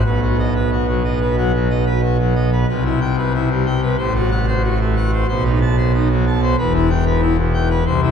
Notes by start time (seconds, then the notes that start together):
0.05 B1 B2 B4
0.22 F#4
0.39 D#5
0.56 B4
0.72 F#4
0.88 F#3
1.04 D#5
1.21 B4
1.37 F#3 F#4
1.54 F#3
1.70 D#5
1.86 B4
2.02 F#4
2.19 F#3
2.35 D#5
2.52 B4
2.69 C2 C3 B4
2.84 E4
3.01 G5
3.18 B4
3.34 E4
3.50 G3
3.66 G5
3.82 B4
3.98 A1 A2 C5
4.15 F#4
4.31 F#5
4.47 C5
4.64 F#4
4.80 A3
4.96 F#5
5.13 C5
5.28 B1 B2 C5
5.45 D#4
5.61 A5
5.77 C5
5.94 D#4
6.10 F#3
6.26 A5
6.42 C5
6.58 E1 E2 B4
6.74 E4
6.90 G5
7.06 B4
7.22 E4
7.38 B2
7.54 G5
7.70 B4
7.86 C2 C3 C5
8.03 E4